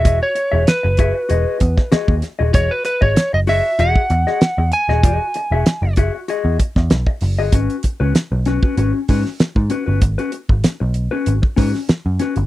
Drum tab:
HH |x-x-x-x-x-x-x-x-|x-x-x-o-x-x-x-x-|x-x-x-x-x-x-x-o-|xxx-x-x-x-o-x-x-|
SD |----o------oo-o-|----o-o----oo--o|----o------oo-o-|----o-o----oo---|
BD |o-----o---oo-o--|o--o-----o------|o-----o---oo-o--|o-o----o--o--o--|

HH |xxx-x-x-x-o-x-xx|
SD |----o------oo-o-|
BD |o--o-----oo-----|